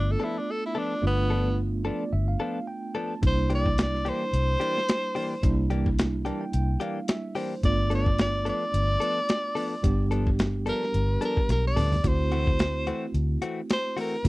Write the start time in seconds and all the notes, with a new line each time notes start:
Already playing: G1 A3 B3 D4 F4
0.12 A4
0.20 F3 B3 D4 A4
0.24 E4
0.38 D4
0.51 A4
0.66 E4
0.75 F3 B3 D4 A4
1.02 G1 A3 B3 D4 F4
1.07 B3
1.30 F3 B3 D4 A4
1.85 F3 B3 D4 A4 D5
2.13 G1 E5
2.28 F5
2.40 F3 B3 D4 A4 F5
2.67 G5
2.95 F3 B3 D4 A4 A5
3.22 C2 G3 A#3 D4 E4, kick, closed hi-hat
3.27 C5
3.50 E3 A#3 D4 G4, closed hi-hat
3.55 D5
3.66 kick
3.78 snare, closed hi-hat
3.83 D5
3.95 snare
4.05 E3 A#3 D4 G4 C5, closed hi-hat
4.33 C2, closed hi-hat
4.60 E3 A#3 D4 G4, closed hi-hat
4.78 snare
4.89 snare, closed hi-hat
5.15 E3 A#3 D4 G4, open hi-hat
5.43 C2 G3 A#3 D4 E4, kick, closed hi-hat
5.70 E3 A#3 D4 G4, closed hi-hat
5.86 kick
5.99 snare, closed hi-hat
6.25 E3 A#3 D4 G4 A5, closed hi-hat
6.41 G5
6.53 C2 G5, closed hi-hat
6.80 E3 A#3 D4 G4 F5, closed hi-hat
7.08 E5, snare, closed hi-hat
7.35 E3 A#3 D4 G4 C5, open hi-hat
7.63 G1 A3 B3 D4 F4 D5, kick, closed hi-hat
7.90 F3 B3 D4 A4, closed hi-hat
7.95 D5
8.06 kick
8.18 D5, snare, closed hi-hat
8.45 F3 B3 D4 A4 D5, closed hi-hat
8.74 G1, closed hi-hat
9.00 F3 B3 D4 A4, closed hi-hat
9.29 snare, closed hi-hat
9.55 F3 B3 D4 A4, open hi-hat
9.83 G1 G3 B3 D4 G4, kick, closed hi-hat
10.11 F3 B3 D4 A4, closed hi-hat
10.27 kick
10.39 snare, closed hi-hat
10.66 F3 B3 D4 A4 A#4, closed hi-hat
10.83 snare
10.94 G1, closed hi-hat
11.21 F3 B3 D4 A4 A#4, closed hi-hat
11.37 kick
11.49 B1 A#4, snare, closed hi-hat
11.67 D5
11.76 D2 F3 B3 D4 A4, mid tom, open hi-hat
11.92 floor tom
12.03 D2 A3 C4 E4 F#4 C5, kick, closed hi-hat
12.32 E3 A3 C4 F#4, closed hi-hat
12.47 kick
12.59 snare, closed hi-hat
12.87 E3 A3 C4 F#4, closed hi-hat
13.14 D2, closed hi-hat
13.42 E3 A3 C4 F#4, closed hi-hat
13.70 C5, snare, closed hi-hat
13.97 E3 A3 C4 F#4 A#4, open hi-hat
14.24 D2 A3 C4 E4 F#4, kick, closed hi-hat